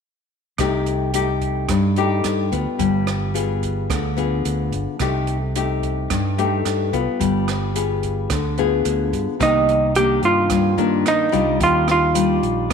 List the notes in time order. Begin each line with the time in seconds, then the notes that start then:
0.58 C2 C3 A3 D#4 G4, kick, cross-stick, closed hi-hat
0.86 closed hi-hat
1.14 A3 D#4 G4, closed hi-hat
1.41 kick, closed hi-hat
1.69 G2, kick, cross-stick, closed hi-hat
1.96 A3 D#4 G4, closed hi-hat
2.24 G2, cross-stick, closed hi-hat
2.52 D2 B3 F4, kick, closed hi-hat
2.78 G1 G3, kick, closed hi-hat
3.07 cross-stick, closed hi-hat
3.34 B3 F4 G#4, closed hi-hat
3.62 kick, closed hi-hat
3.90 D2 D3, kick, cross-stick, closed hi-hat
4.17 B3 F4 G#4, closed hi-hat
4.45 D2, closed hi-hat
4.72 G1, kick, closed hi-hat
4.99 C2 C3 A3 D#4 G4, kick, cross-stick, closed hi-hat
5.27 closed hi-hat
5.55 A3 D#4 G4, closed hi-hat
5.83 kick, closed hi-hat
6.10 G2, kick, cross-stick, closed hi-hat
6.38 A3 D#4 G4, closed hi-hat
6.65 G2, cross-stick, closed hi-hat
6.93 C2 B3 F4, kick, closed hi-hat
7.19 G1 G3, kick, closed hi-hat
7.48 cross-stick, closed hi-hat
7.75 B3 F4 G#4, closed hi-hat
8.03 kick, closed hi-hat
8.30 D2 D3, kick, cross-stick, closed hi-hat
8.58 B3 F4 G#4, closed hi-hat
8.85 D2, closed hi-hat
9.13 G2, kick, closed hi-hat
9.40 C2 C3 D#3 A#3 D#4, kick, cross-stick, closed hi-hat
9.69 closed hi-hat
9.95 D#3 A#3 D4 G4, closed hi-hat
10.23 G2 F4, closed hi-hat
10.50 G2, kick, cross-stick, closed hi-hat
10.78 G2 D#3 A#3 D4, closed hi-hat
11.06 D#4, cross-stick, closed hi-hat
11.32 C2 G3 D4 F4, closed hi-hat
11.60 D#2 D#3 F4, kick, closed hi-hat
11.88 F4, cross-stick, closed hi-hat
12.15 G3 D4 F4, closed hi-hat
12.43 A#1, closed hi-hat
12.70 A#2, kick